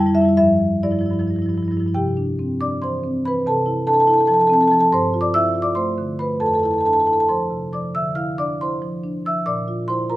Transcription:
0.00 0.10 F2 medium
0.00 0.06 G3 medium
0.00 0.07 E4 medium
0.00 0.14 G5 loud
0.06 0.20 F2 medium
0.06 0.15 G3 medium
0.06 0.14 E4 medium
0.14 0.25 G3 medium
0.14 0.22 E4 medium
0.14 0.36 E5 medium
0.20 0.33 F2 medium
0.20 0.29 E4 medium
0.25 0.33 G3 medium
0.25 0.33 E4 medium
0.37 0.81 G2 medium
0.37 0.81 F3 medium
0.37 0.81 E4 medium
0.37 0.81 E5 loud
0.83 0.92 G2 medium
0.83 0.92 F3 medium
0.83 0.91 E4 medium
0.83 1.26 D5 medium
0.91 1.02 G2 medium
0.91 1.01 F3 soft
0.91 0.99 E4 soft
0.99 1.11 G2 medium
0.99 1.10 F3 soft
0.99 1.06 E4 soft
1.06 1.13 E4 soft
1.10 1.21 G2 medium
1.10 1.19 F3 soft
1.10 1.20 E4 soft
1.19 1.30 G2 medium
1.19 1.27 F3 soft
1.19 1.28 E4 soft
1.27 1.39 G2 medium
1.27 1.36 F3 soft
1.27 1.34 E4 soft
1.34 1.46 F3 soft
1.34 1.42 E4 soft
1.39 1.49 G2 medium
1.39 1.49 E4 soft
1.46 1.58 G2 medium
1.46 1.54 F3 soft
1.46 1.58 E4 soft
1.54 1.68 G2 medium
1.54 1.62 F3 soft
1.54 1.65 E4 soft
1.62 1.71 F3 soft
1.62 1.72 E4 soft
1.68 1.77 G2 medium
1.68 1.80 F3 soft
1.72 1.80 E4 soft
1.77 1.86 G2 medium
1.77 1.91 F3 soft
1.77 1.88 E4 soft
1.86 1.91 G2 medium
1.86 1.91 E4 soft
1.94 3.40 C3 medium
1.94 2.55 G4 medium
1.94 2.56 G5 medium
2.17 2.51 D4 soft
2.39 2.60 C4 soft
2.61 2.94 D4 soft
2.61 2.80 D5 medium
2.61 2.80 D6 medium
2.82 3.15 E3 medium
2.82 3.22 C5 medium
2.82 3.22 C6 medium
3.04 3.37 C4 soft
3.25 3.46 E3 soft
3.25 3.45 B4 medium
3.25 3.44 B5 medium
3.46 4.88 C3 medium
3.46 3.85 A4 medium
3.46 3.86 A5 medium
3.66 3.99 E4 soft
3.87 4.07 D4 soft
3.87 3.94 A4 medium
3.87 3.93 A5 medium
3.93 4.02 A4 soft
3.93 4.00 A5 medium
4.00 4.11 A4 medium
4.00 4.07 A5 medium
4.07 4.41 E4 medium
4.07 4.18 A4 medium
4.07 4.14 A5 medium
4.14 4.20 A5 medium
4.18 4.25 A4 medium
4.18 4.27 A5 medium
4.25 4.62 F3 medium
4.25 4.32 A4 soft
4.25 4.34 A5 medium
4.32 4.40 A4 medium
4.32 4.41 A5 medium
4.40 4.47 A4 medium
4.40 4.47 A5 medium
4.47 4.83 C4 medium
4.47 4.55 A4 medium
4.47 4.54 A5 medium
4.54 4.62 A4 soft
4.54 4.61 A5 medium
4.61 4.70 A4 medium
4.61 4.68 A5 medium
4.68 4.92 F3 medium
4.68 4.79 A4 soft
4.68 4.74 A5 medium
4.74 4.81 A5 medium
4.79 4.87 A4 medium
4.79 4.88 A5 medium
4.92 6.37 G2 medium
4.92 5.18 C5 medium
4.92 5.19 C6 medium
5.14 5.46 F4 medium
5.21 5.33 D5 medium
5.21 5.33 D6 medium
5.34 5.55 E4 medium
5.34 5.60 E5 medium
5.34 5.60 E6 loud
5.55 5.88 F4 medium
5.62 5.75 D5 medium
5.62 5.75 D6 medium
5.75 6.10 A3 medium
5.75 6.16 C5 medium
5.75 6.16 C6 medium
5.98 6.32 D3 medium
6.19 6.40 A3 soft
6.19 6.40 B4 medium
6.19 6.39 B5 medium
6.40 7.90 F2 medium
6.40 6.48 A4 medium
6.40 6.46 A5 medium
6.46 6.55 A4 soft
6.46 6.54 A5 medium
6.54 6.63 A4 medium
6.54 6.59 A5 medium
6.59 6.71 A4 soft
6.59 6.65 A5 medium
6.63 6.98 E4 soft
6.63 6.74 A5 medium
6.71 6.78 A4 medium
6.71 6.81 A5 medium
6.78 6.85 A4 medium
6.78 6.86 A5 medium
6.85 7.07 D4 soft
6.85 6.93 A4 medium
6.85 6.93 A5 medium
6.93 6.99 A4 soft
6.93 7.00 A5 medium
6.99 7.05 A4 medium
6.99 7.07 A5 medium
7.05 7.42 E4 soft
7.05 7.13 A4 soft
7.05 7.13 A5 medium
7.13 7.20 A4 soft
7.13 7.20 A5 medium
7.20 7.24 A4 soft
7.20 7.24 A5 medium
7.28 7.64 F3 soft
7.28 7.70 C5 medium
7.28 7.70 C6 medium
7.50 7.85 C3 soft
7.73 7.94 F3 soft
7.73 7.93 D5 soft
7.73 7.93 D6 medium
7.95 9.40 D3 medium
7.95 8.15 E5 medium
7.95 8.15 E6 medium
8.15 8.50 E4 soft
8.15 8.36 F5 medium
8.15 8.36 F6 medium
8.38 8.59 D4 soft
8.38 8.58 D5 medium
8.38 8.58 D6 medium
8.61 8.94 E4 soft
8.61 9.20 C5 medium
8.61 9.21 C6 medium
8.82 9.15 F3 soft
9.04 9.36 D4 soft
9.26 9.45 F3 soft
9.26 9.45 E5 medium
9.26 9.45 E6 medium
9.46 10.17 A#2 medium
9.46 9.85 D5 medium
9.46 9.86 D6 medium
9.68 10.00 F4 soft
9.88 10.08 E4 soft
9.88 10.08 C5 medium
9.88 10.07 C6 medium
10.09 10.17 F4 soft
10.09 10.17 A#4 medium
10.09 10.17 A#5 medium

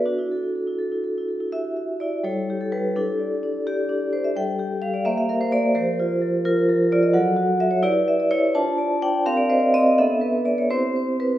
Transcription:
0.05 1.50 D4 soft
0.05 0.80 F#4 soft
0.18 0.38 E4 soft
0.32 0.51 A4 soft
0.43 0.63 E4 soft
0.55 0.75 A4 soft
0.67 0.87 E4 soft
0.79 0.99 A4 soft
0.92 1.12 E4 soft
1.04 1.24 A4 soft
1.18 1.37 E4 soft
1.29 1.49 A4 soft
1.40 1.51 E4 soft
1.52 2.00 E4 soft
1.52 2.21 F#4 soft
1.52 2.21 G4 soft
1.52 1.75 E5 medium
1.77 2.23 E5 soft
2.00 2.23 E4 soft
2.00 2.25 D5 medium
2.23 2.71 G3 medium
2.23 2.92 E4 soft
2.23 2.60 A4 soft
2.23 2.60 C#5 medium
2.50 2.95 G4 soft
2.61 2.73 A4 soft
2.72 2.95 G3 medium
2.72 2.96 B4 medium
2.96 3.42 D4 soft
2.96 4.32 E4 soft
2.96 3.66 G4 soft
2.96 3.67 A4 medium
3.19 3.66 D5 soft
3.43 3.88 D4 soft
3.67 4.13 G4 medium
3.67 4.11 D5 soft
3.89 4.34 D4 soft
4.13 4.24 C5 medium
4.13 4.35 D5 soft
4.24 4.36 E5 medium
4.36 4.81 G3 soft
4.36 4.58 G4 soft
4.36 5.02 A4 soft
4.36 4.83 G5 medium
4.59 5.05 G4 soft
4.82 5.05 G3 soft
4.82 4.94 F5 medium
4.94 5.06 D5 medium
5.05 5.52 A#3 medium
5.05 5.72 G4 soft
5.05 5.40 C5 soft
5.05 5.17 E5 medium
5.18 5.29 F5 medium
5.29 5.74 A#4 soft
5.29 5.41 E5 medium
5.41 5.52 C5 medium
5.52 5.75 A#3 medium
5.52 5.76 D5 medium
5.75 6.21 F3 medium
5.75 7.10 G4 soft
5.75 6.44 A#4 soft
5.75 6.45 C5 medium
6.00 6.44 F4 medium
6.22 6.68 F3 medium
6.45 6.91 F4 medium
6.45 6.91 A#4 medium
6.69 7.13 F3 medium
6.92 7.14 F4 medium
6.92 7.03 D5 medium
7.03 7.14 D#5 medium
7.13 7.59 F#3 medium
7.13 7.35 F#4 soft
7.13 7.80 A4 soft
7.13 7.60 F#5 medium
7.37 7.82 F#4 medium
7.60 7.83 F#3 soft
7.60 7.72 E5 medium
7.71 7.83 C#5 medium
7.83 8.30 E4 medium
7.83 8.50 G4 medium
7.83 8.50 B4 medium
7.83 8.07 D5 loud
8.08 8.19 E5 medium
8.20 8.31 D5 medium
8.31 8.54 E4 medium
8.31 8.55 C#5 loud
8.54 9.01 D4 medium
8.54 9.22 F4 soft
8.54 9.21 C5 soft
8.54 9.02 A5 medium
8.78 9.24 D5 medium
9.02 9.25 D4 medium
9.02 9.25 G5 medium
9.26 9.73 C4 medium
9.26 9.92 G4 soft
9.26 9.93 A#4 medium
9.26 9.37 F5 loud
9.37 9.49 D5 medium
9.50 9.95 C5 medium
9.50 9.61 D#5 medium
9.60 9.72 D5 medium
9.74 9.96 C4 medium
9.74 9.97 D#5 loud
9.98 10.45 B3 medium
9.98 10.66 D4 soft
9.98 10.67 A4 soft
9.98 10.46 E5 medium
10.21 10.68 B4 medium
10.45 10.69 B3 soft
10.45 10.57 D5 medium
10.58 10.70 C#5 medium
10.70 11.19 C4 medium
10.70 11.38 E4 soft
10.70 11.38 G4 soft
10.70 10.95 C5 medium
10.96 11.38 C5 soft
11.20 11.38 C4 soft
11.20 11.38 B4 medium

